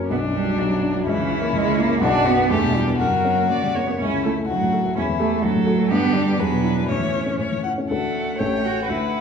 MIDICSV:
0, 0, Header, 1, 5, 480
1, 0, Start_track
1, 0, Key_signature, 2, "minor"
1, 0, Tempo, 480384
1, 100, Time_signature, 2, 2, 24, 8
1, 2497, Tempo, 496689
1, 3948, Key_signature, 2, "major"
1, 4417, Tempo, 476190
1, 6337, Tempo, 497925
1, 9052, End_track
2, 0, Start_track
2, 0, Title_t, "Viola"
2, 0, Program_c, 0, 41
2, 84, Note_on_c, 0, 62, 43
2, 1062, Note_on_c, 0, 61, 49
2, 1077, Note_off_c, 0, 62, 0
2, 2011, Note_off_c, 0, 61, 0
2, 2017, Note_on_c, 0, 62, 56
2, 2463, Note_off_c, 0, 62, 0
2, 2503, Note_on_c, 0, 62, 46
2, 2983, Note_on_c, 0, 70, 40
2, 2998, Note_off_c, 0, 62, 0
2, 3418, Note_off_c, 0, 70, 0
2, 3462, Note_on_c, 0, 74, 41
2, 3700, Note_on_c, 0, 73, 34
2, 3715, Note_off_c, 0, 74, 0
2, 3945, Note_off_c, 0, 73, 0
2, 4179, Note_on_c, 0, 69, 43
2, 4355, Note_off_c, 0, 69, 0
2, 4657, Note_on_c, 0, 69, 38
2, 4835, Note_off_c, 0, 69, 0
2, 5126, Note_on_c, 0, 69, 52
2, 5306, Note_off_c, 0, 69, 0
2, 5600, Note_on_c, 0, 69, 52
2, 5781, Note_off_c, 0, 69, 0
2, 5851, Note_on_c, 0, 62, 54
2, 6305, Note_off_c, 0, 62, 0
2, 6334, Note_on_c, 0, 62, 47
2, 6818, Note_on_c, 0, 61, 39
2, 6832, Note_off_c, 0, 62, 0
2, 7597, Note_off_c, 0, 61, 0
2, 7799, Note_on_c, 0, 78, 35
2, 8260, Note_on_c, 0, 79, 32
2, 8275, Note_off_c, 0, 78, 0
2, 8733, Note_on_c, 0, 78, 36
2, 8748, Note_off_c, 0, 79, 0
2, 9052, Note_off_c, 0, 78, 0
2, 9052, End_track
3, 0, Start_track
3, 0, Title_t, "Violin"
3, 0, Program_c, 1, 40
3, 87, Note_on_c, 1, 62, 51
3, 1020, Note_off_c, 1, 62, 0
3, 1066, Note_on_c, 1, 64, 58
3, 1997, Note_off_c, 1, 64, 0
3, 2013, Note_on_c, 1, 66, 65
3, 2485, Note_off_c, 1, 66, 0
3, 2495, Note_on_c, 1, 67, 58
3, 2964, Note_off_c, 1, 67, 0
3, 2978, Note_on_c, 1, 66, 43
3, 3693, Note_off_c, 1, 66, 0
3, 3949, Note_on_c, 1, 64, 45
3, 4386, Note_off_c, 1, 64, 0
3, 4411, Note_on_c, 1, 66, 45
3, 4884, Note_off_c, 1, 66, 0
3, 4908, Note_on_c, 1, 64, 47
3, 5368, Note_off_c, 1, 64, 0
3, 5383, Note_on_c, 1, 69, 46
3, 5843, Note_off_c, 1, 69, 0
3, 5857, Note_on_c, 1, 67, 58
3, 6341, Note_on_c, 1, 71, 53
3, 6355, Note_off_c, 1, 67, 0
3, 6811, Note_off_c, 1, 71, 0
3, 6816, Note_on_c, 1, 73, 44
3, 7248, Note_off_c, 1, 73, 0
3, 7304, Note_on_c, 1, 73, 36
3, 7534, Note_off_c, 1, 73, 0
3, 7539, Note_on_c, 1, 78, 41
3, 7616, Note_off_c, 1, 78, 0
3, 7787, Note_on_c, 1, 69, 36
3, 8231, Note_off_c, 1, 69, 0
3, 8255, Note_on_c, 1, 73, 39
3, 8726, Note_off_c, 1, 73, 0
3, 8732, Note_on_c, 1, 71, 49
3, 9052, Note_off_c, 1, 71, 0
3, 9052, End_track
4, 0, Start_track
4, 0, Title_t, "Cello"
4, 0, Program_c, 2, 42
4, 111, Note_on_c, 2, 59, 54
4, 191, Note_off_c, 2, 59, 0
4, 352, Note_on_c, 2, 55, 52
4, 587, Note_on_c, 2, 54, 47
4, 602, Note_off_c, 2, 55, 0
4, 1060, Note_off_c, 2, 54, 0
4, 1066, Note_on_c, 2, 52, 61
4, 1530, Note_off_c, 2, 52, 0
4, 1547, Note_on_c, 2, 56, 74
4, 1787, Note_on_c, 2, 58, 68
4, 1802, Note_off_c, 2, 56, 0
4, 2038, Note_on_c, 2, 62, 76
4, 2053, Note_off_c, 2, 58, 0
4, 2270, Note_on_c, 2, 59, 78
4, 2285, Note_off_c, 2, 62, 0
4, 2516, Note_on_c, 2, 57, 67
4, 2531, Note_off_c, 2, 59, 0
4, 2742, Note_on_c, 2, 55, 58
4, 2756, Note_off_c, 2, 57, 0
4, 2966, Note_off_c, 2, 55, 0
4, 2972, Note_on_c, 2, 54, 54
4, 3462, Note_on_c, 2, 58, 46
4, 3477, Note_off_c, 2, 54, 0
4, 3575, Note_on_c, 2, 55, 47
4, 3589, Note_off_c, 2, 58, 0
4, 3694, Note_off_c, 2, 55, 0
4, 3699, Note_on_c, 2, 58, 49
4, 3749, Note_off_c, 2, 58, 0
4, 3819, Note_on_c, 2, 59, 42
4, 3869, Note_off_c, 2, 59, 0
4, 3935, Note_on_c, 2, 61, 59
4, 4173, Note_off_c, 2, 61, 0
4, 4184, Note_on_c, 2, 57, 53
4, 4262, Note_off_c, 2, 57, 0
4, 4424, Note_on_c, 2, 54, 48
4, 4891, Note_off_c, 2, 54, 0
4, 4895, Note_on_c, 2, 61, 60
4, 4975, Note_off_c, 2, 61, 0
4, 5121, Note_on_c, 2, 57, 61
4, 5358, Note_on_c, 2, 54, 67
4, 5373, Note_off_c, 2, 57, 0
4, 5853, Note_on_c, 2, 59, 74
4, 5868, Note_off_c, 2, 54, 0
4, 6078, Note_on_c, 2, 55, 64
4, 6093, Note_off_c, 2, 59, 0
4, 6322, Note_on_c, 2, 54, 64
4, 6337, Note_off_c, 2, 55, 0
4, 6800, Note_off_c, 2, 54, 0
4, 6806, Note_on_c, 2, 52, 47
4, 7291, Note_off_c, 2, 52, 0
4, 7777, Note_on_c, 2, 57, 50
4, 8508, Note_on_c, 2, 66, 46
4, 8523, Note_off_c, 2, 57, 0
4, 8745, Note_on_c, 2, 64, 43
4, 8759, Note_off_c, 2, 66, 0
4, 9052, Note_off_c, 2, 64, 0
4, 9052, End_track
5, 0, Start_track
5, 0, Title_t, "Grand piano"
5, 0, Program_c, 3, 0
5, 0, Control_c, 3, 64, 127
5, 0, Note_on_c, 3, 30, 36
5, 0, Note_on_c, 3, 42, 34
5, 0, Note_on_c, 3, 54, 33
5, 0, Note_on_c, 3, 61, 35
5, 0, Note_on_c, 3, 70, 35
5, 97, Note_on_c, 3, 35, 40
5, 119, Control_c, 3, 64, 0
5, 125, Note_off_c, 3, 54, 0
5, 127, Note_off_c, 3, 42, 0
5, 127, Note_off_c, 3, 61, 0
5, 129, Note_off_c, 3, 30, 0
5, 129, Note_off_c, 3, 70, 0
5, 208, Note_on_c, 3, 42, 33
5, 276, Control_c, 3, 64, 127
5, 329, Note_on_c, 3, 62, 34
5, 410, Note_off_c, 3, 42, 0
5, 446, Note_on_c, 3, 54, 34
5, 531, Note_off_c, 3, 62, 0
5, 562, Note_off_c, 3, 35, 0
5, 577, Note_on_c, 3, 35, 36
5, 650, Note_off_c, 3, 54, 0
5, 686, Note_on_c, 3, 42, 33
5, 818, Note_on_c, 3, 62, 36
5, 889, Note_off_c, 3, 42, 0
5, 954, Note_on_c, 3, 54, 39
5, 1014, Note_off_c, 3, 62, 0
5, 1048, Note_off_c, 3, 35, 0
5, 1062, Note_on_c, 3, 37, 51
5, 1070, Note_off_c, 3, 54, 0
5, 1084, Control_c, 3, 64, 0
5, 1186, Note_on_c, 3, 49, 35
5, 1222, Control_c, 3, 64, 127
5, 1309, Note_on_c, 3, 64, 39
5, 1374, Note_off_c, 3, 49, 0
5, 1408, Note_on_c, 3, 58, 44
5, 1495, Note_off_c, 3, 64, 0
5, 1511, Note_off_c, 3, 37, 0
5, 1526, Note_on_c, 3, 37, 45
5, 1604, Note_off_c, 3, 58, 0
5, 1656, Note_on_c, 3, 49, 42
5, 1762, Note_on_c, 3, 64, 45
5, 1848, Note_off_c, 3, 49, 0
5, 1888, Note_on_c, 3, 58, 45
5, 1961, Note_off_c, 3, 64, 0
5, 1995, Note_off_c, 3, 37, 0
5, 2005, Note_on_c, 3, 35, 59
5, 2012, Note_off_c, 3, 58, 0
5, 2035, Control_c, 3, 64, 0
5, 2124, Note_on_c, 3, 42, 39
5, 2191, Control_c, 3, 64, 127
5, 2244, Note_on_c, 3, 66, 45
5, 2322, Note_off_c, 3, 42, 0
5, 2374, Note_on_c, 3, 59, 39
5, 2442, Note_off_c, 3, 66, 0
5, 2476, Note_off_c, 3, 35, 0
5, 2496, Note_off_c, 3, 59, 0
5, 2497, Note_on_c, 3, 40, 53
5, 2515, Control_c, 3, 64, 0
5, 2627, Note_on_c, 3, 47, 37
5, 2677, Control_c, 3, 64, 127
5, 2743, Note_on_c, 3, 64, 40
5, 2811, Note_off_c, 3, 47, 0
5, 2850, Note_on_c, 3, 59, 35
5, 2931, Note_off_c, 3, 64, 0
5, 2960, Note_off_c, 3, 40, 0
5, 2970, Note_on_c, 3, 42, 41
5, 2973, Note_off_c, 3, 59, 0
5, 2993, Control_c, 3, 64, 0
5, 3089, Note_on_c, 3, 49, 28
5, 3174, Control_c, 3, 64, 127
5, 3219, Note_on_c, 3, 61, 31
5, 3288, Note_off_c, 3, 49, 0
5, 3335, Note_on_c, 3, 58, 30
5, 3413, Note_off_c, 3, 61, 0
5, 3451, Note_off_c, 3, 42, 0
5, 3466, Note_on_c, 3, 42, 29
5, 3532, Note_off_c, 3, 58, 0
5, 3587, Note_on_c, 3, 49, 29
5, 3709, Note_on_c, 3, 61, 30
5, 3781, Note_off_c, 3, 49, 0
5, 3842, Note_on_c, 3, 58, 30
5, 3901, Note_off_c, 3, 61, 0
5, 3935, Note_off_c, 3, 42, 0
5, 3955, Note_off_c, 3, 58, 0
5, 3955, Note_on_c, 3, 37, 43
5, 3967, Control_c, 3, 64, 0
5, 4081, Note_on_c, 3, 49, 30
5, 4118, Control_c, 3, 64, 127
5, 4193, Note_on_c, 3, 64, 35
5, 4262, Note_off_c, 3, 49, 0
5, 4307, Note_on_c, 3, 57, 34
5, 4375, Note_off_c, 3, 64, 0
5, 4407, Note_off_c, 3, 37, 0
5, 4421, Note_off_c, 3, 57, 0
5, 4428, Note_on_c, 3, 38, 38
5, 4438, Control_c, 3, 64, 0
5, 4545, Note_on_c, 3, 45, 32
5, 4573, Control_c, 3, 64, 127
5, 4661, Note_on_c, 3, 66, 34
5, 4733, Note_off_c, 3, 45, 0
5, 4782, Note_on_c, 3, 57, 35
5, 4851, Note_off_c, 3, 66, 0
5, 4888, Note_off_c, 3, 38, 0
5, 4899, Note_off_c, 3, 57, 0
5, 4910, Note_on_c, 3, 40, 44
5, 4914, Control_c, 3, 64, 0
5, 5026, Note_on_c, 3, 52, 33
5, 5095, Control_c, 3, 64, 127
5, 5131, Note_on_c, 3, 67, 36
5, 5212, Note_off_c, 3, 52, 0
5, 5258, Note_on_c, 3, 57, 39
5, 5322, Note_off_c, 3, 67, 0
5, 5365, Note_off_c, 3, 40, 0
5, 5374, Note_off_c, 3, 57, 0
5, 5378, Note_on_c, 3, 38, 44
5, 5390, Control_c, 3, 64, 0
5, 5488, Note_on_c, 3, 45, 35
5, 5559, Control_c, 3, 64, 127
5, 5613, Note_on_c, 3, 66, 43
5, 5678, Note_off_c, 3, 45, 0
5, 5723, Note_on_c, 3, 57, 43
5, 5801, Note_off_c, 3, 66, 0
5, 5836, Note_off_c, 3, 38, 0
5, 5845, Note_off_c, 3, 57, 0
5, 5846, Note_on_c, 3, 43, 48
5, 5867, Control_c, 3, 64, 0
5, 5963, Note_on_c, 3, 50, 36
5, 6022, Control_c, 3, 64, 127
5, 6088, Note_on_c, 3, 62, 43
5, 6162, Note_off_c, 3, 50, 0
5, 6217, Note_on_c, 3, 59, 42
5, 6287, Note_off_c, 3, 62, 0
5, 6322, Note_off_c, 3, 43, 0
5, 6335, Note_on_c, 3, 40, 45
5, 6339, Note_off_c, 3, 59, 0
5, 6357, Control_c, 3, 64, 0
5, 6457, Note_on_c, 3, 47, 35
5, 6519, Control_c, 3, 64, 127
5, 6565, Note_on_c, 3, 64, 40
5, 6648, Note_off_c, 3, 47, 0
5, 6694, Note_on_c, 3, 62, 32
5, 6763, Note_off_c, 3, 64, 0
5, 6801, Note_off_c, 3, 40, 0
5, 6812, Note_on_c, 3, 45, 40
5, 6816, Note_off_c, 3, 62, 0
5, 6837, Control_c, 3, 64, 0
5, 6923, Note_on_c, 3, 52, 25
5, 6974, Control_c, 3, 64, 127
5, 7058, Note_on_c, 3, 64, 29
5, 7127, Note_off_c, 3, 52, 0
5, 7175, Note_on_c, 3, 61, 30
5, 7256, Note_off_c, 3, 64, 0
5, 7281, Note_off_c, 3, 45, 0
5, 7295, Note_on_c, 3, 45, 29
5, 7376, Note_off_c, 3, 61, 0
5, 7424, Note_on_c, 3, 52, 26
5, 7546, Note_on_c, 3, 64, 28
5, 7624, Note_off_c, 3, 52, 0
5, 7676, Note_on_c, 3, 61, 27
5, 7744, Note_off_c, 3, 64, 0
5, 7775, Note_off_c, 3, 45, 0
5, 7795, Note_off_c, 3, 61, 0
5, 7795, Note_on_c, 3, 38, 34
5, 7795, Note_on_c, 3, 62, 23
5, 7802, Note_on_c, 3, 66, 25
5, 7807, Note_on_c, 3, 69, 23
5, 7814, Control_c, 3, 64, 0
5, 7968, Control_c, 3, 64, 127
5, 8231, Note_off_c, 3, 62, 0
5, 8234, Note_off_c, 3, 66, 0
5, 8236, Note_off_c, 3, 69, 0
5, 8255, Note_off_c, 3, 38, 0
5, 8272, Note_on_c, 3, 33, 33
5, 8273, Note_on_c, 3, 61, 24
5, 8280, Note_on_c, 3, 67, 24
5, 8281, Note_on_c, 3, 69, 26
5, 8289, Control_c, 3, 64, 0
5, 8472, Control_c, 3, 64, 127
5, 8710, Note_off_c, 3, 61, 0
5, 8713, Note_off_c, 3, 67, 0
5, 8714, Note_off_c, 3, 69, 0
5, 8733, Note_off_c, 3, 33, 0
5, 8739, Note_on_c, 3, 38, 36
5, 8766, Control_c, 3, 64, 0
5, 8923, Control_c, 3, 64, 127
5, 9052, Note_off_c, 3, 38, 0
5, 9052, End_track
0, 0, End_of_file